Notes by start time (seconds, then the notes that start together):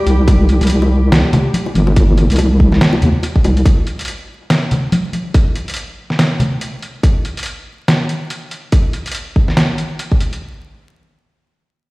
Already playing: G3 C4 G4 D5
0.06 C2, closed hi-hat, high bongo
0.28 kick, closed hi-hat, high bongo
0.49 closed hi-hat
0.61 C2, closed hi-hat, high bongo
0.63 closed hi-hat
0.67 closed hi-hat
0.70 closed hi-hat
0.82 high bongo
1.12 C2, snare, closed hi-hat, high bongo
1.33 closed hi-hat, high bongo, low conga
1.54 closed hi-hat, high conga
1.66 high bongo
1.75 G1, closed hi-hat, high conga
1.87 high bongo
1.96 kick, closed hi-hat
2.17 closed hi-hat, high bongo
2.30 C2, closed hi-hat
2.32 closed hi-hat
2.36 closed hi-hat, high bongo
2.39 closed hi-hat
2.60 kick
2.72 snare, high bongo
2.81 snare, closed hi-hat
2.93 high bongo
3.02 D#2, closed hi-hat, low conga
3.23 closed hi-hat, high bongo
3.36 kick
3.44 C2, closed hi-hat, high bongo
3.57 closed hi-hat
3.66 kick, closed hi-hat
3.87 closed hi-hat
3.99 closed hi-hat
4.01 closed hi-hat
4.05 closed hi-hat
4.08 closed hi-hat
4.50 snare, closed hi-hat
4.71 closed hi-hat, low conga
4.92 closed hi-hat, high conga
5.13 closed hi-hat, high conga
5.34 kick, closed hi-hat
5.56 closed hi-hat
5.68 closed hi-hat
5.70 closed hi-hat
5.74 closed hi-hat
5.77 closed hi-hat
6.10 snare
6.19 snare, closed hi-hat
6.40 closed hi-hat, low conga
6.61 closed hi-hat
6.83 closed hi-hat
7.03 kick, closed hi-hat
7.25 closed hi-hat
7.37 closed hi-hat
7.39 closed hi-hat
7.43 closed hi-hat
7.46 closed hi-hat
7.88 snare, closed hi-hat
8.09 closed hi-hat
8.30 closed hi-hat
8.51 closed hi-hat
8.72 kick, closed hi-hat
8.93 closed hi-hat
9.06 closed hi-hat
9.07 closed hi-hat
9.12 closed hi-hat
9.15 closed hi-hat
9.36 kick
9.48 snare
9.57 snare, closed hi-hat
9.78 closed hi-hat
9.99 closed hi-hat
10.12 kick
10.20 closed hi-hat
10.33 closed hi-hat